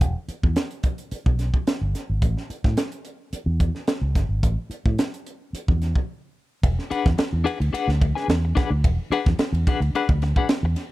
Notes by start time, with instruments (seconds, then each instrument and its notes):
0.01 fingered electric bass E1, kick, closed hi-hat
0.28 muted fingered electric bass stroke, closed hi-hat
0.43 fingered electric bass E2, kick
0.56 snare, closed hi-hat
0.71 closed hi-hat
0.83 kick, closed hi-hat
0.98 closed hi-hat
1.11 muted fingered electric bass stroke, closed hi-hat
1.26 fingered electric bass B1, kick
1.39 snare, closed hi-hat
1.54 kick
1.67 snare, closed hi-hat
1.81 fingered electric bass G1
1.95 snare, closed hi-hat
2.10 fingered electric bass G#1
2.22 fingered electric bass A1, kick, closed hi-hat
2.37 snare
2.50 muted fingered electric bass stroke, closed hi-hat
2.64 fingered electric bass A2, kick, snare
2.77 snare, closed hi-hat
2.92 closed hi-hat
3.05 closed hi-hat
3.33 muted fingered electric bass stroke, closed hi-hat
3.46 fingered electric bass E2
3.60 kick, closed hi-hat
3.75 snare
3.88 snare, closed hi-hat
4.01 fingered electric bass C#2
4.15 fingered electric bass G1, kick, snare, closed hi-hat
4.29 fingered electric bass G#1
4.43 fingered electric bass A1, kick, closed hi-hat
4.70 muted fingered electric bass stroke, closed hi-hat
4.86 fingered electric bass A2, kick
4.98 snare, closed hi-hat
5.14 closed hi-hat
5.26 closed hi-hat
5.53 muted fingered electric bass stroke, closed hi-hat
5.68 fingered electric bass E2, kick
5.82 snare, closed hi-hat
5.96 kick
6.63 fingered electric bass E1, kick, ride
6.79 snare
6.90 clean electric guitar D4 G#4 B4 F#5, muted fingered electric bass stroke, ride
7.06 fingered electric bass E2, kick, snare
7.18 muted clean electric guitar stroke, muted fingered electric bass stroke, snare, ride
7.33 fingered electric bass E2
7.44 clean electric guitar D4 G#4 B4 F#5, ride
7.60 fingered electric bass D2, muted clean electric guitar stroke, ride
7.73 clean electric guitar D4 G#4 B4 F#5, muted fingered electric bass stroke, ride
7.88 fingered electric bass D2, snare
8.01 muted clean electric guitar stroke, kick, ride
8.15 clean electric guitar D4 G#4 B4 G#5, snare
8.28 fingered electric bass E2, snare, ride
8.45 muted clean electric guitar stroke
8.55 clean electric guitar D4 G#4 B4 F#5, kick, snare, ride
8.70 fingered electric bass D2, muted clean electric guitar stroke
8.84 fingered electric bass E1, kick, ride
9.10 clean electric guitar D4 G#4 B4 F#5, muted fingered electric bass stroke, ride
9.26 fingered electric bass E2, kick, snare
9.38 muted fingered electric bass stroke, muted clean electric guitar stroke, snare, ride
9.53 fingered electric bass E2, ride
9.67 clean electric guitar D4 G#4 B4 F#5, kick, ride
9.80 fingered electric bass D2, muted clean electric guitar stroke, ride
9.94 clean electric guitar D4 G#4 B4 F#5, muted fingered electric bass stroke, ride
10.09 fingered electric bass D2, kick
10.22 muted clean electric guitar stroke, snare, ride
10.36 clean electric guitar D4 G#4 B4 F#5, kick
10.49 snare, ride
10.63 fingered electric bass E2, muted clean electric guitar stroke
10.76 snare, ride